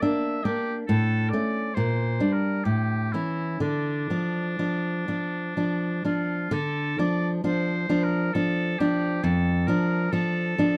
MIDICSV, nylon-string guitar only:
0, 0, Header, 1, 2, 480
1, 0, Start_track
1, 0, Key_signature, -1, "minor"
1, 0, Tempo, 867052
1, 481, Time_signature, 3, 2, 24, 8
1, 965, Tempo, 906344
1, 1445, Tempo, 967742
1, 3365, Tempo, 900901
1, 5629, End_track
2, 0, Start_track
2, 0, Title_t, "Nylon-string guitar"
2, 0, Program_c, 0, 24
2, 13, Note_on_c, 0, 58, 38
2, 14, Note_on_c, 0, 62, 37
2, 224, Note_off_c, 0, 58, 0
2, 224, Note_off_c, 0, 62, 0
2, 249, Note_on_c, 0, 58, 36
2, 249, Note_on_c, 0, 62, 42
2, 461, Note_off_c, 0, 62, 0
2, 462, Note_off_c, 0, 58, 0
2, 492, Note_on_c, 0, 45, 51
2, 720, Note_off_c, 0, 45, 0
2, 738, Note_on_c, 0, 57, 32
2, 739, Note_on_c, 0, 61, 35
2, 951, Note_off_c, 0, 57, 0
2, 951, Note_off_c, 0, 61, 0
2, 979, Note_on_c, 0, 46, 42
2, 1201, Note_off_c, 0, 46, 0
2, 1208, Note_on_c, 0, 55, 32
2, 1210, Note_on_c, 0, 62, 35
2, 1427, Note_off_c, 0, 55, 0
2, 1428, Note_off_c, 0, 62, 0
2, 1446, Note_on_c, 0, 45, 40
2, 1674, Note_off_c, 0, 45, 0
2, 1689, Note_on_c, 0, 52, 31
2, 1691, Note_on_c, 0, 61, 32
2, 1907, Note_off_c, 0, 52, 0
2, 1908, Note_off_c, 0, 61, 0
2, 1918, Note_on_c, 0, 50, 36
2, 2157, Note_off_c, 0, 50, 0
2, 2165, Note_on_c, 0, 53, 29
2, 2169, Note_on_c, 0, 62, 31
2, 2389, Note_off_c, 0, 53, 0
2, 2392, Note_off_c, 0, 62, 0
2, 2408, Note_on_c, 0, 53, 28
2, 2411, Note_on_c, 0, 62, 29
2, 2633, Note_off_c, 0, 53, 0
2, 2634, Note_off_c, 0, 62, 0
2, 2651, Note_on_c, 0, 53, 28
2, 2655, Note_on_c, 0, 62, 30
2, 2873, Note_off_c, 0, 53, 0
2, 2875, Note_off_c, 0, 62, 0
2, 2893, Note_on_c, 0, 53, 27
2, 2896, Note_on_c, 0, 62, 27
2, 3113, Note_off_c, 0, 53, 0
2, 3114, Note_off_c, 0, 62, 0
2, 3129, Note_on_c, 0, 53, 26
2, 3133, Note_on_c, 0, 62, 30
2, 3344, Note_off_c, 0, 53, 0
2, 3346, Note_off_c, 0, 62, 0
2, 3360, Note_on_c, 0, 50, 52
2, 3600, Note_off_c, 0, 50, 0
2, 3615, Note_on_c, 0, 53, 32
2, 3618, Note_on_c, 0, 62, 39
2, 3835, Note_off_c, 0, 53, 0
2, 3835, Note_off_c, 0, 62, 0
2, 3854, Note_on_c, 0, 53, 35
2, 3857, Note_on_c, 0, 62, 36
2, 4073, Note_off_c, 0, 53, 0
2, 4074, Note_off_c, 0, 62, 0
2, 4097, Note_on_c, 0, 53, 35
2, 4099, Note_on_c, 0, 62, 41
2, 4313, Note_off_c, 0, 53, 0
2, 4314, Note_off_c, 0, 62, 0
2, 4339, Note_on_c, 0, 53, 34
2, 4343, Note_on_c, 0, 62, 42
2, 4553, Note_off_c, 0, 53, 0
2, 4556, Note_off_c, 0, 62, 0
2, 4581, Note_on_c, 0, 53, 38
2, 4583, Note_on_c, 0, 62, 44
2, 4792, Note_off_c, 0, 53, 0
2, 4793, Note_off_c, 0, 62, 0
2, 4812, Note_on_c, 0, 41, 51
2, 5038, Note_off_c, 0, 41, 0
2, 5049, Note_on_c, 0, 53, 38
2, 5054, Note_on_c, 0, 62, 39
2, 5262, Note_off_c, 0, 53, 0
2, 5265, Note_off_c, 0, 62, 0
2, 5286, Note_on_c, 0, 53, 39
2, 5290, Note_on_c, 0, 62, 41
2, 5505, Note_off_c, 0, 53, 0
2, 5507, Note_off_c, 0, 62, 0
2, 5530, Note_on_c, 0, 53, 37
2, 5534, Note_on_c, 0, 62, 42
2, 5629, Note_off_c, 0, 53, 0
2, 5629, Note_off_c, 0, 62, 0
2, 5629, End_track
0, 0, End_of_file